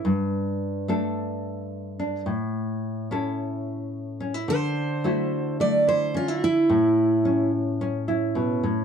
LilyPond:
<<
  \new Staff \with { instrumentName = "Steel-string acoustic guitar" } { \time 4/4 \key d \major \tempo 4 = 108 r1 | r1 | c''2 d''8 c''8 f'8 e'8~ | e'4. r2 r8 | }
  \new Staff \with { instrumentName = "Nylon-string guitar" } { \time 4/4 \key d \major << { r4. <a d' a'>2 d'8 | r4. <cis' e' a'>2 cis'16 e'16 | r4 <a e' fis'>4 a8 e'8 cis'16 e'8. | r4 cis'4 cis'8 e'4. | } \\ { g,1 | a,1 | d1 | a,2. b,8 a,8 | } >> }
>>